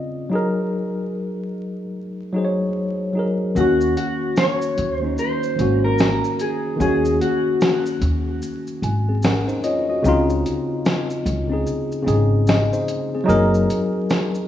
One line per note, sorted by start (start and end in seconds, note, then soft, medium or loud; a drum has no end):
0.00 0.32 C#3 medium
0.00 0.33 C4 medium
0.00 0.33 F4 medium
0.00 0.32 D5 medium
0.00 0.28 D#5 medium
0.00 0.32 F5 medium
0.30 1.82 F#3 medium
0.30 1.83 D#4 medium
0.30 1.84 G#4 medium
0.35 1.85 A#4 loud
2.32 3.09 F#3 medium
2.32 3.10 D#4 medium
2.32 3.11 G#4 medium
2.38 2.44 C5 medium
2.45 3.15 C#5 medium
3.13 3.52 F#3 medium
3.13 3.53 D#4 medium
3.13 3.54 G#4 medium
3.19 3.55 A#4 medium
3.55 3.93 D#2 medium
3.55 4.87 D#3 medium
3.55 4.88 A#3 medium
3.55 4.89 C#4 medium
3.55 3.94 F#4 medium
3.55 shaker medium
3.61 4.90 F#4 loud
3.81 shaker soft
3.97 4.38 F#4 medium
3.97 closed hi-hat medium
3.97 shaker soft
4.36 4.95 C#5 loud
4.36 snare loud
4.36 shaker medium
4.62 shaker medium
4.77 5.15 D#2 medium
4.77 closed hi-hat medium
4.77 shaker soft
4.95 5.19 C5 loud
4.99 5.53 D#3 medium
4.99 5.54 A#3 medium
4.99 5.55 C#4 medium
5.05 5.56 D#4 medium
5.18 5.84 C5 loud
5.18 shaker medium
5.43 shaker soft
5.56 6.20 G#1 medium
5.56 6.70 D#3 medium
5.56 6.72 A#3 medium
5.56 closed hi-hat medium
5.56 shaker soft
5.60 6.73 C#4 medium
5.60 6.73 F#4 medium
5.84 6.41 A#4 medium
5.98 snare loud
5.98 shaker medium
6.24 shaker soft
6.39 6.80 G#4 medium
6.39 closed hi-hat medium
6.39 shaker soft
6.76 8.29 D#3 medium
6.76 8.30 A#3 medium
6.76 8.31 C#4 medium
6.80 7.18 D#2 loud
6.80 8.32 F#4 medium
6.80 7.18 G#4 medium
6.80 shaker medium
7.05 shaker soft
7.21 7.98 F#4 medium
7.21 closed hi-hat medium
7.21 shaker soft
7.61 snare loud
7.61 shaker medium
7.86 shaker soft
8.01 8.39 D#2 medium
8.01 closed hi-hat medium
8.01 shaker soft
8.42 shaker medium
8.67 shaker soft
8.82 9.44 G#1 medium
8.82 9.21 G#5 medium
8.82 closed hi-hat medium
8.82 shaker soft
9.09 9.23 C4 soft
9.09 9.23 G#4 medium
9.23 9.48 C#4 medium
9.23 9.47 A#4 medium
9.23 9.62 F#5 medium
9.23 snare loud
9.23 shaker medium
9.48 9.63 D#4 medium
9.48 9.63 C5 medium
9.48 shaker soft
9.64 9.87 F4 medium
9.64 9.87 C#5 medium
9.64 9.88 D#5 medium
9.64 closed hi-hat medium
9.64 shaker soft
9.89 10.27 F#4 soft
9.89 10.27 D#5 medium
10.02 10.42 C#2 medium
10.02 11.35 C#3 loud
10.02 11.36 C4 medium
10.02 shaker medium
10.06 11.37 D#4 loud
10.06 11.38 F4 loud
10.30 shaker medium
10.46 closed hi-hat medium
10.46 shaker soft
10.85 snare loud
10.85 shaker medium
11.10 shaker soft
11.26 11.63 C#2 medium
11.26 closed hi-hat medium
11.26 shaker soft
11.48 12.01 C#3 medium
11.48 12.02 C4 medium
11.48 12.03 D#4 medium
11.53 12.04 G#4 medium
11.67 shaker medium
11.92 shaker soft
12.02 13.18 C#3 medium
12.02 12.46 C4 medium
12.02 12.47 D#4 medium
12.07 12.68 G#1 medium
12.07 12.48 G#4 loud
12.07 closed hi-hat medium
12.07 shaker soft
12.47 12.71 D#5 medium
12.47 snare loud
12.47 shaker medium
12.73 13.11 D#4 medium
12.73 13.11 C5 medium
12.73 shaker soft
12.88 closed hi-hat medium
12.88 shaker soft
13.15 13.52 C4 medium
13.15 13.26 G#4 medium
13.24 14.48 F#3 loud
13.24 14.48 D#4 loud
13.24 14.48 G#4 loud
13.29 13.66 F#1 loud
13.29 14.48 A#4 loud
13.29 shaker medium
13.54 shaker soft
13.70 closed hi-hat medium
13.70 shaker soft
14.10 snare loud
14.10 shaker medium
14.35 shaker soft